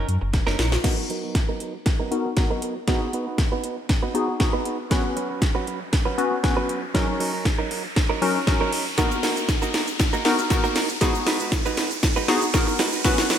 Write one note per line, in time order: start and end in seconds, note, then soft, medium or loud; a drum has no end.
0.00 0.26 C#4 medium
0.00 0.26 D#4 medium
0.00 0.26 F#4 medium
0.00 0.26 A#4 loud
0.08 0.18 F#2 medium
0.08 muted clean electric guitar stroke soft
0.08 closed hi-hat medium
0.21 0.40 F#1 medium
0.21 muted clean electric guitar stroke soft
0.33 muted clean electric guitar stroke soft
0.33 kick loud
0.33 snare medium
0.33 closed hi-hat medium
0.47 0.56 F#1 medium
0.47 0.57 F#3 medium
0.47 0.58 C#4 medium
0.47 0.58 D#4 medium
0.47 0.59 A#4 medium
0.47 snare medium
0.59 0.77 A#1 medium
0.59 0.74 F#3 medium
0.59 0.72 C#4 medium
0.59 0.71 D#4 medium
0.59 0.71 A#4 medium
0.59 snare medium
0.59 closed hi-hat medium
0.72 muted clean electric guitar stroke medium
0.72 snare medium
0.84 1.03 F#3 medium
0.84 1.53 B3 medium
0.84 0.97 B3 medium
0.84 1.53 D#4 medium
0.84 0.97 D#4 medium
0.84 1.53 F#4 medium
0.84 1.53 A#4 medium
0.84 0.97 A#4 medium
0.84 kick loud
0.84 snare medium
0.84 closed hi-hat medium
0.84 crash medium
0.84 riser medium
0.98 muted clean electric guitar stroke soft
1.09 1.23 F#3 medium
1.09 1.23 B3 medium
1.09 1.22 D#4 medium
1.09 1.22 A#4 medium
1.09 closed hi-hat medium
1.23 1.34 F#3 soft
1.23 1.34 B3 medium
1.23 1.35 D#4 medium
1.23 1.35 A#4 medium
1.35 muted clean electric guitar stroke soft
1.35 kick loud
1.35 snare medium
1.35 closed hi-hat medium
1.49 1.59 F#3 medium
1.49 1.60 B3 medium
1.49 1.60 D#4 medium
1.49 1.61 A#4 medium
1.60 1.75 F#3 medium
1.60 1.74 B3 medium
1.60 1.73 D#4 medium
1.60 1.73 A#4 medium
1.60 closed hi-hat medium
1.74 muted clean electric guitar stroke medium
1.86 muted clean electric guitar stroke soft
1.86 kick loud
1.86 snare medium
1.86 closed hi-hat medium
2.00 2.10 F#3 medium
2.00 2.11 B3 medium
2.00 2.11 D#4 medium
2.00 2.11 A#4 medium
2.11 2.28 B3 medium
2.11 2.28 D#4 medium
2.11 2.29 F#4 medium
2.11 2.29 A#4 loud
2.11 muted clean electric guitar stroke soft
2.11 closed hi-hat medium
2.25 muted clean electric guitar stroke soft
2.37 2.71 B3 medium
2.37 2.71 D#4 medium
2.37 2.72 F#4 medium
2.37 2.72 A#4 medium
2.37 muted clean electric guitar stroke soft
2.37 kick loud
2.37 snare medium
2.37 closed hi-hat medium
2.50 2.61 F#3 medium
2.50 2.62 B3 medium
2.50 2.62 D#4 medium
2.50 2.62 A#4 medium
2.62 2.77 F#3 medium
2.62 2.76 B3 medium
2.62 2.75 D#4 medium
2.62 2.75 A#4 medium
2.62 closed hi-hat medium
2.76 muted clean electric guitar stroke soft
2.88 3.56 B3 medium
2.88 3.06 B3 medium
2.88 3.56 D#4 medium
2.88 3.01 D#4 medium
2.88 3.56 F#4 medium
2.88 3.01 F#4 medium
2.88 3.56 G#4 loud
2.88 3.00 B4 medium
2.88 kick loud
2.88 snare medium
2.88 closed hi-hat medium
3.01 muted clean electric guitar stroke soft
3.13 3.27 B3 medium
3.13 3.26 D#4 medium
3.13 3.26 F#4 medium
3.13 3.25 B4 medium
3.13 closed hi-hat medium
3.26 3.37 B3 medium
3.26 3.38 D#4 medium
3.26 3.38 F#4 medium
3.26 3.38 B4 medium
3.38 muted clean electric guitar stroke soft
3.38 kick loud
3.38 snare medium
3.38 closed hi-hat medium
3.52 3.63 B3 medium
3.52 3.63 D#4 medium
3.52 3.63 F#4 medium
3.52 3.64 B4 medium
3.64 3.79 B3 medium
3.64 3.77 D#4 medium
3.64 3.77 F#4 medium
3.64 3.76 B4 medium
3.64 closed hi-hat medium
3.77 muted clean electric guitar stroke soft
3.89 muted clean electric guitar stroke soft
3.89 kick loud
3.89 snare medium
3.89 closed hi-hat medium
4.03 4.13 B3 medium
4.03 4.14 D#4 medium
4.03 4.14 F#4 medium
4.03 4.14 B4 medium
4.14 4.32 B3 medium
4.14 4.32 D#4 medium
4.14 4.32 F#4 medium
4.14 4.32 G#4 medium
4.14 muted clean electric guitar stroke soft
4.14 closed hi-hat medium
4.28 muted clean electric guitar stroke soft
4.40 4.75 B3 medium
4.40 4.75 D#4 medium
4.40 4.75 F#4 medium
4.40 4.75 G#4 medium
4.40 muted clean electric guitar stroke soft
4.40 kick loud
4.40 snare medium
4.40 closed hi-hat medium
4.53 4.64 B3 medium
4.53 4.65 D#4 medium
4.53 4.65 F#4 medium
4.53 4.65 B4 medium
4.65 4.80 B3 medium
4.65 4.78 D#4 medium
4.65 4.78 F#4 medium
4.65 4.77 B4 medium
4.65 closed hi-hat medium
4.79 muted clean electric guitar stroke soft
4.90 5.09 F#3 medium
4.90 5.59 B3 medium
4.90 5.04 C#4 medium
4.90 5.60 C#4 medium
4.90 5.60 F#4 medium
4.90 5.03 F#4 medium
4.90 5.60 B4 loud
4.90 5.03 B4 medium
4.90 kick loud
4.90 snare medium
4.90 closed hi-hat medium
5.04 muted clean electric guitar stroke soft
5.16 5.29 F#3 medium
5.16 5.29 C#4 medium
5.16 5.29 F#4 medium
5.16 5.28 B4 medium
5.16 closed hi-hat medium
5.29 5.40 F#3 medium
5.29 5.41 C#4 medium
5.29 5.41 F#4 medium
5.29 5.41 B4 medium
5.42 muted clean electric guitar stroke soft
5.42 kick loud
5.42 snare medium
5.42 closed hi-hat medium
5.55 5.66 F#3 medium
5.55 5.66 C#4 medium
5.55 5.67 F#4 medium
5.55 5.67 B4 medium
5.67 5.82 F#3 medium
5.67 5.80 C#4 medium
5.67 5.80 F#4 medium
5.67 5.79 B4 medium
5.67 closed hi-hat medium
5.81 muted clean electric guitar stroke soft
5.92 muted clean electric guitar stroke soft
5.92 kick loud
5.92 snare medium
5.92 closed hi-hat medium
6.05 6.16 F#3 medium
6.05 6.17 C#4 medium
6.05 6.17 F#4 medium
6.05 6.17 B4 medium
6.18 6.35 B3 medium
6.18 6.35 C#4 medium
6.18 6.35 F#4 medium
6.18 6.35 B4 loud
6.18 muted clean electric guitar stroke soft
6.18 closed hi-hat medium
6.31 muted clean electric guitar stroke soft
6.43 6.78 B3 medium
6.43 6.78 C#4 medium
6.43 6.78 F#4 medium
6.43 6.78 B4 medium
6.43 muted clean electric guitar stroke soft
6.43 kick loud
6.43 snare medium
6.43 closed hi-hat medium
6.57 6.68 F#3 medium
6.57 6.68 C#4 medium
6.57 6.68 F#4 medium
6.57 6.69 B4 loud
6.69 6.84 F#3 medium
6.69 6.82 C#4 medium
6.69 6.82 F#4 medium
6.69 6.81 B4 medium
6.69 closed hi-hat medium
6.82 muted clean electric guitar stroke soft
6.94 7.13 F#3 medium
6.94 7.63 F#3 medium
6.94 7.63 C#4 medium
6.94 7.08 C#4 medium
6.94 7.63 D#4 medium
6.94 7.07 D#4 medium
6.94 7.63 F#4 medium
6.94 7.63 A#4 loud
6.94 7.07 A#4 medium
6.94 kick loud
6.94 snare medium
6.94 closed hi-hat medium
7.08 muted clean electric guitar stroke soft
7.20 7.33 F#3 medium
7.20 7.33 C#4 medium
7.20 7.32 D#4 medium
7.20 7.32 A#4 medium
7.20 open hi-hat medium
7.33 7.44 F#3 medium
7.33 7.44 C#4 medium
7.33 7.44 D#4 medium
7.33 7.45 A#4 medium
7.45 muted clean electric guitar stroke soft
7.45 kick loud
7.45 snare medium
7.45 closed hi-hat medium
7.59 7.69 F#3 medium
7.59 7.70 C#4 medium
7.59 7.70 D#4 medium
7.59 7.71 A#4 medium
7.70 7.85 F#3 medium
7.70 7.84 C#4 medium
7.70 7.83 D#4 medium
7.70 7.83 A#4 medium
7.70 open hi-hat medium
7.84 muted clean electric guitar stroke soft
7.96 muted clean electric guitar stroke soft
7.96 kick loud
7.96 snare medium
7.96 closed hi-hat medium
8.09 8.21 F#3 medium
8.09 8.21 C#4 medium
8.09 8.21 D#4 medium
8.09 8.21 A#4 medium
8.22 8.39 F#3 medium
8.22 8.39 C#4 medium
8.22 8.39 D#4 medium
8.22 8.39 F#4 medium
8.22 8.39 A#4 loud
8.22 muted clean electric guitar stroke soft
8.22 open hi-hat medium
8.35 muted clean electric guitar stroke soft
8.47 8.82 F#3 medium
8.47 8.82 C#4 medium
8.47 8.82 D#4 medium
8.47 8.82 F#4 medium
8.47 8.82 A#4 medium
8.47 muted clean electric guitar stroke soft
8.47 kick loud
8.47 snare medium
8.47 closed hi-hat medium
8.61 8.71 F#3 medium
8.61 8.71 C#4 medium
8.61 8.72 D#4 medium
8.61 8.72 A#4 medium
8.72 8.87 F#3 medium
8.72 8.86 C#4 medium
8.72 8.85 D#4 medium
8.72 8.85 A#4 medium
8.72 open hi-hat medium
8.86 muted clean electric guitar stroke soft
8.98 9.16 A#3 medium
8.98 9.66 B3 medium
8.98 9.66 D#4 medium
8.98 9.11 D#4 medium
8.98 9.67 F#4 medium
8.98 9.10 F#4 loud
8.98 9.67 A#4 loud
8.98 9.10 A#4 medium
8.98 kick loud
8.98 snare medium
8.98 closed hi-hat medium
8.98 shaker medium
9.11 muted clean electric guitar stroke soft
9.11 shaker medium
9.23 9.37 A#3 medium
9.23 9.36 D#4 medium
9.23 9.36 F#4 medium
9.23 9.35 A#4 medium
9.23 snare medium
9.23 open hi-hat medium
9.23 shaker medium
9.37 9.47 A#3 soft
9.37 9.48 D#4 soft
9.37 9.48 F#4 medium
9.37 9.48 A#4 medium
9.37 shaker medium
9.37 shaker soft
9.49 kick loud
9.49 snare medium
9.49 closed hi-hat medium
9.49 shaker medium
9.62 9.73 A#3 medium
9.62 9.73 D#4 medium
9.62 9.74 F#4 medium
9.62 9.74 A#4 medium
9.62 shaker medium
9.74 9.89 A#3 medium
9.74 9.87 D#4 medium
9.74 9.87 F#4 medium
9.74 9.86 A#4 medium
9.74 snare medium
9.74 open hi-hat medium
9.74 shaker medium
9.74 shaker soft
9.87 muted clean electric guitar stroke soft
9.87 shaker medium
10.00 muted clean electric guitar stroke soft
10.00 kick loud
10.00 snare medium
10.00 closed hi-hat medium
10.00 shaker medium
10.13 10.24 A#3 medium
10.13 10.24 D#4 medium
10.13 10.24 F#4 medium
10.13 10.25 A#4 medium
10.13 shaker medium
10.13 shaker soft
10.25 10.42 B3 medium
10.25 10.42 D#4 medium
10.25 10.42 F#4 medium
10.25 10.42 A#4 loud
10.25 snare medium
10.25 open hi-hat medium
10.25 shaker medium
10.39 muted clean electric guitar stroke soft
10.39 shaker medium
10.50 10.85 B3 medium
10.50 10.85 D#4 medium
10.50 10.85 F#4 medium
10.50 10.85 A#4 loud
10.50 muted clean electric guitar stroke soft
10.50 kick loud
10.50 snare medium
10.50 closed hi-hat medium
10.50 shaker medium
10.64 10.74 A#3 medium
10.64 10.75 D#4 medium
10.64 10.75 F#4 medium
10.64 10.76 A#4 medium
10.64 shaker medium
10.64 shaker soft
10.76 10.91 A#3 medium
10.76 10.89 D#4 medium
10.76 10.88 F#4 medium
10.76 10.88 A#4 medium
10.76 snare loud
10.76 open hi-hat medium
10.76 shaker medium
10.89 muted clean electric guitar stroke soft
10.89 shaker medium
10.89 shaker soft
11.01 11.20 G#3 medium
11.01 11.70 B3 medium
11.01 11.70 D#4 medium
11.01 11.15 D#4 medium
11.01 11.70 F#4 medium
11.01 11.14 F#4 medium
11.01 11.70 G#4 loud
11.01 11.14 B4 medium
11.01 kick loud
11.01 snare medium
11.01 closed hi-hat medium
11.01 shaker medium
11.15 muted clean electric guitar stroke soft
11.15 shaker medium
11.27 11.40 G#3 medium
11.27 11.40 D#4 medium
11.27 11.40 F#4 medium
11.27 11.39 B4 medium
11.27 snare medium
11.27 open hi-hat medium
11.27 shaker medium
11.40 11.51 G#3 medium
11.40 11.52 D#4 medium
11.40 11.52 F#4 medium
11.40 11.52 B4 medium
11.40 shaker medium
11.52 kick loud
11.52 snare loud
11.52 closed hi-hat medium
11.52 shaker medium
11.65 11.76 G#3 medium
11.65 11.77 D#4 medium
11.65 11.77 F#4 medium
11.65 11.77 B4 medium
11.65 shaker medium
11.77 11.92 G#3 medium
11.77 11.91 D#4 medium
11.77 11.90 F#4 medium
11.77 11.90 B4 medium
11.77 snare medium
11.77 open hi-hat medium
11.77 shaker medium
11.77 shaker soft
11.91 muted clean electric guitar stroke soft
11.91 shaker medium
12.03 muted clean electric guitar stroke soft
12.03 kick loud
12.03 snare loud
12.03 closed hi-hat medium
12.03 shaker medium
12.16 12.27 G#3 medium
12.16 12.27 D#4 medium
12.16 12.27 F#4 medium
12.16 12.28 B4 medium
12.16 shaker medium
12.16 shaker soft
12.28 12.45 B3 medium
12.28 12.45 D#4 medium
12.28 12.45 F#4 medium
12.28 12.46 G#4 loud
12.28 muted clean electric guitar stroke soft
12.28 snare loud
12.28 open hi-hat medium
12.28 shaker medium
12.42 muted clean electric guitar stroke soft
12.42 shaker medium
12.54 12.88 B3 medium
12.54 12.88 D#4 medium
12.54 12.88 F#4 medium
12.54 12.89 A#4 loud
12.54 muted clean electric guitar stroke soft
12.54 kick loud
12.54 snare loud
12.54 closed hi-hat medium
12.54 shaker medium
12.67 muted clean electric guitar stroke medium
12.67 shaker medium
12.79 12.93 G#3 medium
12.79 12.92 D#4 medium
12.79 12.92 F#4 medium
12.79 12.91 B4 medium
12.79 snare loud
12.79 open hi-hat medium
12.79 shaker medium
12.92 13.04 G#3 medium
12.92 13.05 D#4 medium
12.92 13.04 F#4 medium
12.92 13.05 B4 medium
12.92 shaker medium
12.92 shaker soft
13.04 13.23 F#3 medium
13.04 13.38 B3 medium
13.04 13.38 C#4 medium
13.04 13.18 C#4 medium
13.04 13.38 F#4 medium
13.04 13.17 F#4 loud
13.04 13.38 B4 loud
13.04 13.17 B4 loud
13.04 kick loud
13.04 snare loud
13.04 closed hi-hat medium
13.04 shaker medium
13.18 muted clean electric guitar stroke soft
13.18 snare loud
13.18 shaker medium
13.30 13.38 F#3 medium
13.30 13.38 C#4 medium
13.30 13.38 F#4 medium
13.30 13.38 B4 medium
13.30 snare loud
13.30 open hi-hat medium
13.30 shaker medium